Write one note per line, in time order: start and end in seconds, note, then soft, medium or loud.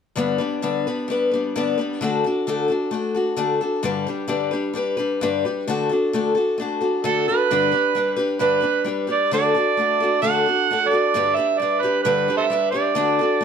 0.16 0.39 G2 medium
0.16 0.40 D3 medium
0.16 0.40 G3 medium
0.16 0.39 B3 medium
0.16 0.38 D4 medium
0.16 0.37 B4 medium
0.38 0.61 G3 soft
0.38 0.62 B3 soft
0.38 0.62 D4 medium
0.38 0.62 B4 soft
0.62 0.86 G2 medium
0.62 0.86 D3 medium
0.62 0.86 G3 medium
0.62 0.86 B3 medium
0.62 0.86 D4 medium
0.62 0.86 B4 medium
0.87 1.07 G3 soft
0.87 1.09 B3 medium
0.87 1.09 D4 medium
0.87 1.09 B4 medium
1.08 1.31 G3 medium
1.08 1.32 B3 medium
1.08 1.32 D4 medium
1.08 1.30 B4 medium
1.31 1.55 G3 soft
1.31 1.55 B3 soft
1.31 1.56 D4 medium
1.31 1.55 B4 soft
1.56 1.78 G2 medium
1.56 1.78 D3 medium
1.56 1.78 G3 medium
1.56 1.79 B3 medium
1.56 1.78 D4 medium
1.56 1.76 B4 medium
1.78 2.02 G3 soft
1.78 2.02 B3 soft
1.78 2.01 D4 medium
1.78 2.01 B4 medium
2.01 2.24 D3 medium
2.01 2.24 A3 medium
2.01 2.24 D4 medium
2.01 2.25 F#4 medium
2.01 2.23 A4 medium
2.24 2.47 D4 soft
2.24 2.48 F#4 medium
2.24 2.47 A4 medium
2.47 2.70 D3 medium
2.47 2.70 A3 medium
2.47 2.70 D4 medium
2.47 2.69 F#4 medium
2.47 2.67 A4 medium
2.68 2.91 D4 soft
2.68 2.92 F#4 soft
2.68 2.92 A4 soft
2.91 3.14 A3 medium
2.91 3.15 D4 medium
2.91 3.15 F#4 medium
2.91 3.13 A4 medium
3.14 3.37 D4 soft
3.14 3.37 F#4 soft
3.14 3.37 A4 soft
3.37 3.60 D3 medium
3.37 3.60 A3 medium
3.37 3.61 D4 medium
3.37 3.61 F#4 medium
3.37 3.60 A4 medium
3.61 3.83 D4 soft
3.61 3.84 F#4 soft
3.61 3.84 A4 medium
3.83 4.06 G2 medium
3.83 4.06 D3 medium
3.83 4.07 G3 medium
3.83 4.07 D4 medium
3.83 4.07 G4 medium
3.83 4.05 B4 medium
4.07 4.27 G3 soft
4.07 4.28 D4 soft
4.07 4.28 G4 medium
4.07 4.29 B4 medium
4.28 4.51 G2 medium
4.28 4.52 D3 medium
4.28 4.52 G3 medium
4.28 4.52 D4 medium
4.28 4.52 G4 medium
4.28 4.50 B4 medium
4.51 4.72 G3 soft
4.51 4.74 D4 soft
4.51 4.75 G4 soft
4.51 4.75 B4 medium
4.73 4.97 G3 medium
4.73 4.98 D4 medium
4.73 4.97 G4 medium
4.73 4.96 B4 medium
4.97 5.21 G3 soft
4.97 5.22 D4 soft
4.97 5.21 G4 soft
4.97 5.20 B4 medium
5.21 5.44 G2 medium
5.21 5.44 D3 medium
5.21 5.45 G3 medium
5.21 5.45 D4 medium
5.21 5.45 G4 medium
5.21 5.44 B4 medium
5.45 5.67 G3 soft
5.45 5.67 D4 soft
5.45 5.68 G4 soft
5.45 5.67 B4 soft
5.67 5.90 D3 medium
5.67 5.90 A3 medium
5.67 5.90 D4 medium
5.67 5.90 F#4 medium
5.67 5.88 A4 medium
5.89 6.13 D4 soft
5.89 6.13 F#4 soft
5.89 6.12 A4 medium
6.13 6.36 D3 medium
6.13 6.36 A3 medium
6.13 6.36 D4 medium
6.13 6.36 F#4 medium
6.13 6.34 A4 medium
6.35 6.58 D4 soft
6.35 6.59 F#4 soft
6.35 6.58 A4 soft
6.58 6.81 A3 medium
6.58 6.82 D4 medium
6.58 6.80 F#4 medium
6.62 6.80 A4 medium
6.81 7.04 D4 soft
6.81 7.04 F#4 soft
6.81 7.04 A4 soft
7.04 7.27 D3 medium
7.04 7.27 A3 medium
7.04 7.27 D4 medium
7.04 7.27 F#4 medium
7.04 7.26 A4 medium
7.04 7.27 A4 medium
7.28 7.50 D4 soft
7.28 7.51 F#4 medium
7.28 7.50 A4 medium
7.28 8.15 B4 loud
7.51 7.73 G2 medium
7.51 7.73 D3 medium
7.51 7.73 G3 medium
7.51 7.73 D4 medium
7.51 7.71 G4 medium
7.51 7.70 B4 medium
7.72 7.94 G3 soft
7.72 7.95 D4 soft
7.72 7.95 G4 soft
7.72 7.95 B4 medium
7.95 8.18 G3 medium
7.95 8.18 D4 medium
7.95 8.16 G4 medium
7.95 8.15 B4 medium
8.16 8.39 G3 soft
8.16 8.40 D4 soft
8.16 8.40 G4 medium
8.16 8.40 B4 medium
8.39 8.63 G2 medium
8.39 8.63 D3 medium
8.39 8.63 G3 medium
8.39 8.62 D4 medium
8.39 8.61 G4 medium
8.39 8.83 B4 medium
8.39 8.59 B4 medium
8.60 8.83 G3 soft
8.60 8.84 D4 soft
8.60 8.86 G4 soft
8.60 8.85 B4 soft
8.84 9.08 G3 medium
8.84 9.08 D4 medium
8.84 9.07 G4 medium
8.84 9.06 B4 medium
9.07 9.32 G3 soft
9.07 9.32 D4 soft
9.07 9.32 G4 soft
9.07 9.31 B4 soft
9.11 9.32 D5 medium
9.31 9.55 D3 medium
9.31 9.55 A3 medium
9.31 9.56 D4 medium
9.31 9.55 F#4 medium
9.31 9.53 A4 medium
9.31 10.20 D5 medium
9.55 9.77 D4 soft
9.55 9.79 F#4 soft
9.55 9.78 A4 medium
9.77 10.00 A3 soft
9.77 10.01 D4 soft
9.77 10.01 F#4 medium
9.77 9.99 A4 medium
10.00 10.22 D4 soft
10.00 10.23 F#4 soft
10.00 10.23 A4 medium
10.22 10.46 D3 medium
10.22 10.46 A3 medium
10.22 10.46 D4 medium
10.22 10.46 F#4 medium
10.22 10.45 A4 medium
10.22 10.90 F#5 loud
10.46 10.70 D4 soft
10.46 10.70 F#4 soft
10.46 10.69 A4 soft
10.71 10.93 A3 medium
10.71 10.93 D4 medium
10.71 10.92 F#4 medium
10.71 10.90 A4 medium
10.88 11.15 A4 soft
10.88 11.37 D5 medium
10.93 11.15 D4 soft
10.93 11.15 F#4 soft
11.14 11.37 G2 medium
11.14 11.38 D3 medium
11.14 11.38 G3 medium
11.14 11.38 D4 medium
11.14 11.37 G4 medium
11.14 11.35 B4 medium
11.35 11.58 G3 soft
11.35 11.61 D4 soft
11.35 11.61 G4 soft
11.35 11.60 B4 medium
11.35 11.60 E5 medium
11.58 11.83 G3 soft
11.58 11.83 D4 medium
11.58 11.83 G4 medium
11.58 11.83 D5 medium
11.63 11.82 B4 medium
11.82 12.04 G3 soft
11.82 12.05 D4 soft
11.82 12.05 G4 soft
11.82 12.02 B4 medium
11.82 12.05 B4 medium
12.03 12.28 G2 medium
12.03 12.29 D3 medium
12.03 12.29 G3 medium
12.03 12.29 D4 medium
12.03 12.28 G4 medium
12.03 12.36 B4 medium
12.03 12.27 B4 medium
12.28 12.49 G3 soft
12.28 12.50 D4 soft
12.28 12.51 G4 soft
12.28 12.51 B4 soft
12.37 12.46 A4 medium
12.37 12.45 C5 medium
12.37 12.71 E5 medium
12.50 12.74 G3 medium
12.50 12.74 D4 medium
12.50 12.73 G4 medium
12.50 12.71 B4 medium
12.71 12.96 G4 medium
12.71 12.96 B4 soft
12.71 13.44 D5 medium
12.75 12.95 G3 soft
12.75 12.95 D4 soft
12.95 13.19 D3 medium
12.95 13.19 A3 medium
12.95 13.20 D4 medium
12.95 13.20 F#4 medium
12.95 13.18 A4 medium
13.19 13.41 D4 soft
13.19 13.42 F#4 soft
13.19 13.43 A4 medium
13.41 13.44 A3 medium